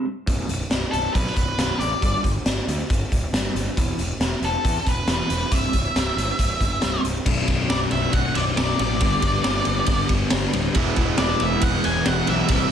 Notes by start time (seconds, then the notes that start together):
0.05 C2 G2
0.27 B0 B1 F#2 B2, kick, closed hi-hat
0.48 B0 B1 F#2, closed hi-hat
0.69 B0 B1 F#2, snare, closed hi-hat
0.91 B0 B1 F#2 A4, closed hi-hat
1.13 B1 F#2 B4, kick, closed hi-hat
1.26 snare
1.36 B0 B1 F#2 B4, kick, closed hi-hat
1.58 B0 B1 F#2 B2, snare, closed hi-hat
1.79 A1 B1 F#2 D5, closed hi-hat
2.01 G1 G2 D3 G3, kick, closed hi-hat
2.24 G1 G2 D3, kick, closed hi-hat
2.46 G1 G2 D3, snare, closed hi-hat
2.67 D2 G2 D3, closed hi-hat
2.90 G1 G2 D3, kick, closed hi-hat
3.11 D1 G2 D3, kick, closed hi-hat
3.32 G1 G2 D3 G3, snare, closed hi-hat
3.55 G1 G2 D3, closed hi-hat
3.77 E1 E2 B2 E3, kick, closed hi-hat
3.98 E1 E2 B2, closed hi-hat
4.19 E1 E2 B2, snare, closed hi-hat
4.42 E1 E2 B2 A4, closed hi-hat
4.64 E2 B2, kick, closed hi-hat
4.86 E1 E2 B2 B4, kick, closed hi-hat
5.07 E1 E2 B2 E3 B4, snare, closed hi-hat
5.30 E1 E2 B2, closed hi-hat
5.51 C1 C2 G2 C3 E5, kick, closed hi-hat
5.73 C1 C2 G2, kick, closed hi-hat
5.95 C1 C2 G2, snare, closed hi-hat
6.16 G1 C2 G2, closed hi-hat
6.39 C1 C2 G2, kick, closed hi-hat
6.59 G1 C2 G2, kick, closed hi-hat
6.81 C1 C2 G2 C3, snare, closed hi-hat
7.03 C1 C2 G2, closed hi-hat
7.24 B0 B1 F#2 B2 F#3 D4, kick, crash
7.29 B2
7.46 B0 B2 F#3 D4, kick, snare, ride
7.68 B0 F#2 B2 F#3 D4 D5, snare, ride
7.90 B0 B2 F#3 D4 E5, ride
8.13 B0 F#5, kick, ride
8.34 B0 D5, ride
8.55 B0 B1 F#2 B2 F#3 D4 D5, snare, ride
8.78 A1 B1 F#2 B2 F#3 D4 D5, ride
8.99 G1 G2 D3 G3 B3 D4 G4, kick, ride
9.21 G1 G3 B3 D4 G4, kick, ride
9.42 G1 G3 B3 D4 G4, snare, ride
9.65 G1 G3 B3 D4 G4, ride
9.86 G1, kick, ride
10.09 G1, kick, ride
10.30 G1 G2 D3 G3 B3 D4 G4, snare, ride
10.52 D1 G2 D3 G3 B3 D4 G4, ride
10.75 E1 E2 B2 E3 G#3 B3 E4, kick, ride
10.96 E1 E3 G#3 B3 E4, kick, ride
11.18 E1 E3 G#3 B3 E4 D5, snare, ride
11.40 E1 E3 G#3 B3 E4 E5, ride
11.61 E1 F#5, kick, ride
11.84 E1 G#5, ride
12.05 E1 E2 B2 E3 G#3 B3 E4 F#5, snare, ride
12.27 B1 E2 B2 E3 G#3 B3 E4 E5, ride
12.48 C1 C2 G2 C3 E3 E4, kick, ride